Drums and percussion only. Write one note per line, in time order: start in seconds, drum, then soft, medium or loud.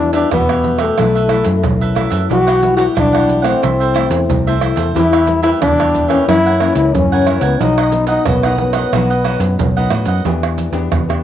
0.13 pandeiro medium
0.13 maracas medium
0.31 pandeiro medium
0.31 tamborim medium
0.31 maracas medium
0.31 surdo medium
0.49 pandeiro soft
0.49 tamborim medium
0.49 maracas soft
0.64 pandeiro medium
0.79 pandeiro medium
0.79 tamborim medium
0.79 maracas medium
0.98 pandeiro medium
0.98 tamborim medium
0.98 maracas medium
0.98 surdo medium
1.16 pandeiro soft
1.16 maracas soft
1.29 pandeiro medium
1.29 tamborim medium
1.29 maracas medium
1.44 pandeiro medium
1.44 maracas medium
1.63 pandeiro medium
1.63 maracas medium
1.63 surdo loud
1.82 pandeiro soft
1.82 maracas soft
1.96 pandeiro medium
1.96 tamborim medium
2.12 pandeiro medium
2.12 maracas medium
2.31 pandeiro medium
2.31 maracas medium
2.31 surdo medium
2.48 pandeiro soft
2.48 tamborim medium
2.48 maracas soft
2.63 pandeiro medium
2.63 maracas medium
2.78 pandeiro medium
2.78 maracas medium
2.97 pandeiro medium
2.97 tamborim medium
2.97 maracas medium
2.97 surdo medium
3.15 pandeiro soft
3.15 tamborim medium
3.15 maracas soft
3.29 pandeiro soft
3.29 maracas medium
3.44 pandeiro medium
3.44 tamborim medium
3.44 maracas medium
3.63 pandeiro medium
3.63 tamborim medium
3.63 maracas medium
3.63 surdo medium
3.81 pandeiro soft
3.81 maracas soft
3.96 pandeiro medium
3.96 tamborim medium
3.96 maracas medium
4.11 pandeiro medium
4.11 maracas medium
4.30 pandeiro medium
4.30 maracas medium
4.30 surdo loud
4.47 pandeiro soft
4.47 maracas soft
4.61 pandeiro medium
4.61 tamborim medium
4.61 maracas medium
4.77 pandeiro medium
4.77 maracas medium
4.96 pandeiro medium
4.96 maracas medium
4.96 surdo medium
5.13 pandeiro soft
5.13 tamborim medium
5.13 maracas soft
5.27 pandeiro medium
5.27 maracas medium
5.43 pandeiro medium
5.43 maracas medium
5.62 pandeiro medium
5.62 tamborim medium
5.62 maracas medium
5.62 surdo loud
5.80 pandeiro soft
5.80 tamborim medium
5.80 maracas soft
5.95 pandeiro medium
5.95 maracas medium
5.95 surdo medium
6.10 pandeiro medium
6.10 tamborim medium
6.10 maracas medium
6.29 pandeiro medium
6.29 tamborim medium
6.29 maracas medium
6.29 surdo medium
6.46 pandeiro soft
6.46 maracas soft
6.61 pandeiro medium
6.61 tamborim medium
6.61 maracas medium
6.75 pandeiro medium
6.75 maracas medium
6.95 pandeiro medium
6.95 maracas medium
6.95 surdo loud
7.12 pandeiro soft
7.12 maracas soft
7.27 pandeiro medium
7.27 tamborim medium
7.27 maracas medium
7.41 pandeiro medium
7.41 maracas medium
7.60 pandeiro medium
7.60 maracas medium
7.60 surdo medium
7.78 pandeiro soft
7.78 tamborim medium
7.78 maracas soft
7.92 pandeiro medium
7.92 maracas medium
8.07 pandeiro medium
8.07 maracas medium
8.25 pandeiro medium
8.25 tamborim medium
8.25 maracas medium
8.25 surdo loud
8.43 pandeiro soft
8.43 tamborim medium
8.43 maracas soft
8.58 pandeiro medium
8.73 pandeiro medium
8.73 tamborim medium
8.73 maracas medium
8.93 pandeiro medium
8.93 tamborim medium
8.93 maracas medium
8.93 surdo medium
9.10 pandeiro soft
9.10 maracas soft
9.25 pandeiro soft
9.25 tamborim medium
9.40 pandeiro medium
9.40 maracas medium
9.59 pandeiro medium
9.59 maracas medium
9.59 surdo loud
9.77 pandeiro soft
9.77 maracas soft
9.90 pandeiro medium
9.90 tamborim medium
9.90 maracas medium
10.06 pandeiro medium
10.06 maracas medium
10.25 pandeiro medium
10.25 maracas medium
10.25 surdo medium
10.43 pandeiro soft
10.43 tamborim medium
10.43 maracas soft
10.58 pandeiro medium
10.58 maracas medium
10.73 pandeiro medium
10.73 maracas medium
10.92 pandeiro medium
10.92 tamborim medium
10.92 maracas medium
10.92 surdo medium
11.10 pandeiro soft
11.10 tamborim medium
11.10 maracas soft